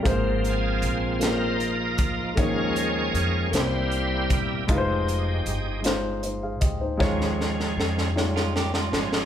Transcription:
<<
  \new Staff \with { instrumentName = "Grand piano" } { \time 6/8 \key aes \major \tempo 4. = 52 << { r2. | r2. | r2 <ees' c''>16 <aes' f''>16 <g' ees''>16 <ees' c''>16~ | <ees' c''>16 r2 r8. | } \\ { <bes f' aes' c''>4 r8 <bes f' aes' bes'>4 r8 | <bes ees' aes' des''>4 r8 <bes e' g' c''>4 r8 | <aes ees' f' ces'' c''>4 r8 <aes ees' f' c''>4 r8 | <aes ees' f' des''>4 r8 <g aes ees' f' des''>4 r8 | } >> }
  \new Staff \with { instrumentName = "Grand piano" } { \clef bass \time 6/8 \key aes \major aes,4. r4. | ees4. c4. | r2. | ees4. r4. | }
  \new Staff \with { instrumentName = "Clean electric guitar" } { \time 6/8 \key aes \major r2. | r2. | r2. | r4. r16 <aes f'>16 <bes g'>16 <aes f'>8. | }
  \new Staff \with { instrumentName = "Tonewheel organ" } { \time 6/8 \key aes \major << { r8 aes'4 bes'4. | des''4. c''4 r8 | r2. | r2. | } \\ { r8 <c' f'>4 <ees' f'>4. | <aes' bes'>4. g'4. | r2. | r2. | } >> }
  \new Staff \with { instrumentName = "Tonewheel organ" } { \time 6/8 \key aes \major <f bes c'>2. | <f aes des'>4. <g bes e'>4. | <aes ees' g'>4. r4. | <f aes des'>4. r4 <f aes des'>8 | }
  \new Staff \with { instrumentName = "Upright bass" } { \clef bass \time 6/8 \key aes \major aes,,4 bes,,4. d,8 | ees,4 f,8 c,4 e,,8 | f,,4 g,,4. d,8 | ees,4 f,4. g,,8 | }
  \new DrumStaff \with { instrumentName = "Drums" } \drummode { \time 6/8 <hh bd>8 hh8 hh8 <hh sn>8 hh8 <hh bd>8 | <hh bd>8 hh8 hh8 <hh sn>8 hh8 <hh bd>8 | <hh bd>8 hh8 hh8 <hh sn>8 hh8 <hh bd>8 | <bd sn>16 sn16 sn16 sn16 sn16 sn16 sn16 sn16 sn16 sn16 sn16 sn16 | }
>>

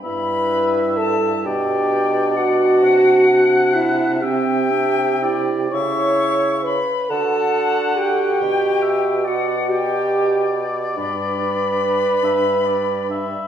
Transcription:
<<
  \new Staff \with { instrumentName = "Flute" } { \time 6/8 \key g \major \tempo 4. = 45 b''4 a''8 g''4 fis''8~ | fis''4 e''8 g''4. | cis'''4 b''8 a''4 g''8~ | g''4 fis''8 g''4 r8 |
b''2. | }
  \new Staff \with { instrumentName = "Oboe" } { \time 6/8 \key g \major e''4. d''4. | fis''4. e''8 e''8 d''8 | e''4 r8 fis''4. | g''8 e''8 d''8 d''4.~ |
d''4. e''8 d''8 e''8 | }
  \new Staff \with { instrumentName = "French horn" } { \time 6/8 \key g \major b'4 a'8 g'4 fis'8~ | fis'4 e'8 g'4. | cis''4 b'8 a'4 g'8~ | g'4 fis'8 g'4 r8 |
b'2. | }
  \new Staff \with { instrumentName = "Clarinet" } { \time 6/8 \key g \major e'4. d'4.~ | d'4. c'8 d'8 e'8 | e'4 r8 fis'4.~ | fis'4. g'4. |
d'8 d'8 d'8 d'8 d'8 d'8 | }
  \new Staff \with { instrumentName = "Bassoon" } { \clef bass \time 6/8 \key g \major g,4. b,4. | c2. | cis4 r8 d4. | b,2. |
g,4. g,4. | }
>>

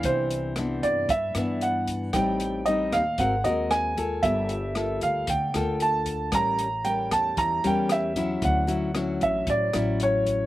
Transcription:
<<
  \new Staff \with { instrumentName = "Grand piano" } { \time 4/4 \key a \mixolydian \tempo 4 = 114 c''4. d''8 e''4 fis''4 | g''4 ees''8 f''8 fis''8 dis''8 gis''4 | e''4. f''8 g''4 a''4 | bes''4 g''8 a''8 bes''8 g''8 e''4 |
fis''4. e''8 d''4 cis''4 | }
  \new Staff \with { instrumentName = "Nylon-string guitar" } { \time 4/4 \key a \mixolydian << { <e d'>4 <e b d'>4 r8 <e b d'>4. | <g c' ees'>4 <g c' ees'>8 r8 <bis fis' ais'>8 <bis fis' ais'>4 <ais f' a'>8~ | <ais f' a'>4 <bes f' a'>4 r8 <bes f' a'>4. | <g bes cis'>8 r8 <g bes cis'>4. <g bes cis'>4 <fis cis' e'>8~ |
<fis cis' e'>8 <fis cis' e'>8 <fis cis' e'>4. <fis cis' e'>4. | } \\ { c2 g,2 | a,2 gis2 | g2 d2 | a,2 e2 |
d2 a,2 | } >> }
  \new Staff \with { instrumentName = "Upright bass" } { \clef bass \time 4/4 \key a \mixolydian c,4. g,8 g,8 g,4. | a,,4. ees,8 gis,,8 dis,4. | g,,4. d,8 d,8 d,4. | a,,4. e,8 e,8 e,4. |
d,4. a,,8 a,,8 a,,4. | }
  \new DrumStaff \with { instrumentName = "Drums" } \drummode { \time 4/4 <hh bd>8 hh8 <hh ss>8 <hh bd>8 <hh bd>8 <hh ss>8 hh8 <hh bd>8 | <hh bd ss>8 hh8 hh8 <hh bd ss>8 <hh bd>8 hh8 <hh ss>8 <hh bd>8 | <hh bd>8 hh8 <hh ss>8 <hh bd>8 <hh bd>8 <hh ss>8 hh8 <hh bd>8 | <hh bd ss>8 hh8 hh8 <hh bd ss>8 <hh bd>8 hh8 <hh ss>8 <hh bd>8 |
<hh bd>8 hh8 <hh ss>8 <hh bd>8 <hh bd>8 <hh ss>8 hh8 <hh bd>8 | }
>>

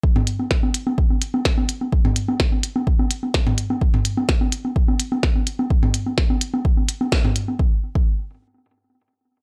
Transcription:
\new DrumStaff \with { instrumentName = "Drums" } \drummode { \time 4/4 \tempo 4 = 127 bd16 <cgho toml>16 hh16 cgho16 <bd sn>16 cgho16 hh16 cgho16 bd16 cgho16 hh16 cgho16 <bd sn>16 cgho16 hh16 cgho16 | bd16 <cgho toml>16 hh16 cgho16 <bd sn>16 cgho16 hh16 cgho16 bd16 cgho16 hh16 cgho16 <bd sn>16 <cgho toml>16 hh16 cgho16 | bd16 <cgho toml>16 hh16 cgho16 <bd sn>16 cgho16 hh16 cgho16 bd16 cgho16 hh16 cgho16 <bd sn>16 cgho16 hh16 cgho16 | bd16 <cgho toml>16 hh16 cgho16 <bd sn>16 cgho16 hh16 cgho16 bd16 cgho16 hh16 cgho16 <bd sn>16 <cgho toml>16 hh16 cgho16 |
bd8. bd16 r4 r4 r4 | }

